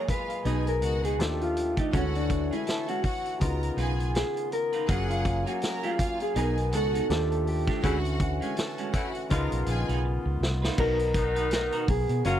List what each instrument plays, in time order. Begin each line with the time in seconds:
Already playing: harmonium A#2 G#3 G#4, grand piano F#3 F#4 G#4 A#4
0.09 violin section F4 F5, clean electric guitar B4, muted clean electric guitar stroke, kick, closed hi-hat
0.30 muted clean electric guitar stroke, closed hi-hat
0.45 fingered electric bass B1, grand piano B2 B3 D#4 G#4, harmonium B2 D#4, clean electric guitar B3 D#4 G#4, violin section G#4 G#5, closed hi-hat
0.67 clean electric guitar A#4, closed hi-hat
0.82 fingered electric bass C#2, violin section F#4 F#5, muted clean electric guitar stroke, closed hi-hat
1.03 clean electric guitar B3 D#4 G#4, closed hi-hat
1.19 fingered electric bass D#2, grand piano D#3 D4 F4 G4 A4, harmonium F3 A3 D4 G4, clean electric guitar G4, muted clean electric guitar stroke, snare, closed hi-hat
1.40 clean electric guitar F4, muted clean electric guitar stroke, closed hi-hat
1.57 closed hi-hat
1.77 clean electric guitar A3 D4 D#4 G4, kick, closed hi-hat
1.92 fingered electric bass D2, grand piano D3 E4 F#4 A4 C#5, harmonium E3 A3 F#4 C#5, clean electric guitar G#3 C#4 F#4, violin section F#4 F#5, kick, closed hi-hat
2.15 clean electric guitar D4, closed hi-hat
2.30 muted clean electric guitar stroke, kick, closed hi-hat
2.51 clean electric guitar G#3 C#4 E4 G#4, violin section G#4 G#5, closed hi-hat
2.67 violin section A4 A5, muted clean electric guitar stroke, snare, closed hi-hat
2.88 clean electric guitar G#3 C#4 F#4, closed hi-hat
3.03 violin section F#4 F#5, muted clean electric guitar stroke, kick, open hi-hat
3.25 muted clean electric guitar stroke, closed hi-hat
3.40 fingered electric bass C#2, grand piano C#3 B3 D#4 F4, harmonium D#3 B3 F4, violin section A#4 A#5, muted clean electric guitar stroke, kick, closed hi-hat
3.63 closed hi-hat
3.77 fingered electric bass B1, clean electric guitar D#4 F4 B4, violin section G#4 G#5, closed hi-hat
3.99 muted clean electric guitar stroke, closed hi-hat
4.14 clean electric guitar G#4, muted clean electric guitar stroke, snare, closed hi-hat
4.36 muted clean electric guitar stroke, closed hi-hat
4.52 clean electric guitar A#4, closed hi-hat
4.73 clean electric guitar D#4 F4 B4, closed hi-hat
4.88 fingered electric bass F#1, grand piano F#3 C#4 G#4 A#4, harmonium F#3 A#3 G#5, clean electric guitar A#3 F4 F#4 G#4, violin section G#4 F#5, kick, closed hi-hat
5.10 clean electric guitar F4, closed hi-hat
5.25 muted clean electric guitar stroke, kick, closed hi-hat
5.46 clean electric guitar A#3 F4 F#4 A#4, violin section G#4 G#5, closed hi-hat
5.61 violin section A#4 A#5, muted clean electric guitar stroke, snare, closed hi-hat
5.83 clean electric guitar A#3 F4 G#4, closed hi-hat
5.98 violin section F4 F5, muted clean electric guitar stroke, kick, closed hi-hat
6.20 clean electric guitar G#4, muted clean electric guitar stroke, closed hi-hat
6.35 fingered electric bass B1, grand piano B2 B3 D#4 G#5, harmonium D#3 B3, clean electric guitar B3 D#4 G#4 A#4, violin section G#4 G#5, closed hi-hat
6.57 closed hi-hat
6.72 fingered electric bass C#2, violin section F#4 F#5, clean electric guitar A4, muted clean electric guitar stroke, closed hi-hat
6.93 clean electric guitar B3 D#4 G#4, closed hi-hat
7.09 fingered electric bass D#2, grand piano D#3 D4 F4 G4 A4, harmonium F3 A3 D4 G4, muted clean electric guitar stroke, snare, closed hi-hat
7.31 muted clean electric guitar stroke, closed hi-hat
7.47 clean electric guitar G4, open hi-hat
7.67 clean electric guitar A3 D4 G4, kick, snare, closed hi-hat
7.83 fingered electric bass D2, grand piano D3 C#4 E4 F#4, horn section E3 A3 C#4 E4, harmonium E3 A3 C#4 F#4, clean electric guitar G#3 C#4 F#4 G#4, violin section F#4 F#5, kick, closed hi-hat
8.05 closed hi-hat
8.20 clean electric guitar F#4, muted clean electric guitar stroke, kick, closed hi-hat
8.41 clean electric guitar G#3 C#4 G#4, violin section G#4 G#5, closed hi-hat
8.57 violin section A4 A5, muted clean electric guitar stroke, snare, closed hi-hat
8.78 clean electric guitar G#3 C#4 F#4, closed hi-hat
8.93 horn section E3 A3 C#4 E4, violin section F#4 F#5, muted clean electric guitar stroke, kick, closed hi-hat
9.15 muted clean electric guitar stroke, closed hi-hat
9.30 fingered electric bass C#2, grand piano C#3 B3 D#4 F4, harmonium D#3 B3 F4, horn section F3 G#3 B3 F4, clean electric guitar D#4 F4 B4, violin section A#4 A#5, kick, closed hi-hat
9.52 fingered electric bass B1, closed hi-hat
9.66 fingered electric bass A#1, violin section G#4 G#5, muted clean electric guitar stroke, closed hi-hat
9.88 fingered electric bass B1, clean electric guitar D#4 F4 B4, closed hi-hat
10.04 muted clean electric guitar stroke
10.26 fingered electric bass C#2, muted clean electric guitar stroke
10.41 fingered electric bass C2, snare
10.62 clean electric guitar D#4 F4 B4, snare
10.78 fingered electric bass B1, grand piano B2 B3 D#4 A#4, harmonium D#3 B3 A#4, clean electric guitar D#4 F#4 A#4, kick, crash
10.99 closed hi-hat
11.14 horn section D#3 B3 D#4, muted clean electric guitar stroke, kick, closed hi-hat
11.36 clean electric guitar D#4 F#4 B4, closed hi-hat
11.51 muted clean electric guitar stroke, snare, closed hi-hat
11.72 clean electric guitar D#4 F#4 A#4, closed hi-hat
11.88 fingered electric bass B1, clean electric guitar G#4, muted clean electric guitar stroke, kick, open hi-hat
12.09 fingered electric bass B2, muted clean electric guitar stroke, closed hi-hat
12.25 fingered electric bass F#1, grand piano F#3 C#4 A#4 F5, harmonium F#3 A#3 F#4, horn section A#3 C#4 F4 F5, clean electric guitar C#4 F4 F#4 A#4, closed hi-hat